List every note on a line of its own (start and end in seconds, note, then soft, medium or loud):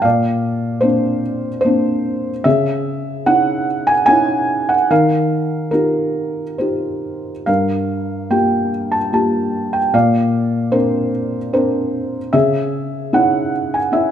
0.02 2.41 A#2 medium
0.02 1.20 D5 medium
0.02 0.85 F5 medium
0.81 1.47 A#3 soft
0.81 1.47 C4 soft
0.81 1.48 D4 soft
0.81 1.59 C5 medium
1.61 2.30 A#3 soft
1.61 2.46 C5 medium
1.65 2.30 C4 soft
1.65 2.30 D4 soft
2.44 4.86 C#3 medium
2.44 3.64 G#4 medium
2.44 3.22 E5 medium
3.26 3.91 C#4 soft
3.26 3.92 D#4 soft
3.26 3.92 E4 medium
3.26 3.90 F#5 medium
3.87 4.04 G#5 medium
4.06 4.74 C#4 medium
4.06 4.74 D#4 soft
4.06 4.74 E4 medium
4.06 4.70 G#5 loud
4.69 4.89 F#5 medium
4.90 7.44 D#3 medium
4.90 5.70 A#4 medium
4.90 5.71 F5 medium
5.71 6.43 D#4 soft
5.71 6.43 F4 soft
5.71 6.43 G4 soft
5.71 6.55 A#4 medium
6.58 7.30 D#4 soft
6.58 7.30 F4 soft
6.58 7.31 G4 soft
6.58 7.43 C5 soft
7.46 9.89 G2 soft
7.46 8.69 A#4 soft
7.46 8.34 F5 medium
8.30 8.96 A#3 soft
8.30 8.96 F4 soft
8.30 8.96 G4 soft
8.30 8.94 G5 medium
8.92 9.12 A5 medium
9.13 9.77 A#3 soft
9.13 9.77 F4 soft
9.13 9.77 G4 soft
9.13 9.76 A5 medium
9.73 9.94 G5 medium
9.94 12.30 A#2 medium
9.94 11.09 D5 medium
9.94 10.75 F5 medium
10.72 11.37 C4 soft
10.72 11.37 D4 soft
10.72 11.37 A#4 soft
10.72 11.52 C5 medium
11.53 12.18 C4 medium
11.53 12.18 D4 soft
11.53 12.19 A#4 medium
11.53 12.30 C5 medium
12.33 14.11 C#3 medium
12.33 13.50 G#4 medium
12.33 13.16 E5 medium
13.13 13.77 C#4 soft
13.13 13.77 D#4 soft
13.13 13.77 E4 medium
13.13 13.75 F#5 medium
13.74 13.92 G#5 medium
13.92 14.11 C#4 soft
13.92 14.11 E4 medium
13.92 14.11 E5 medium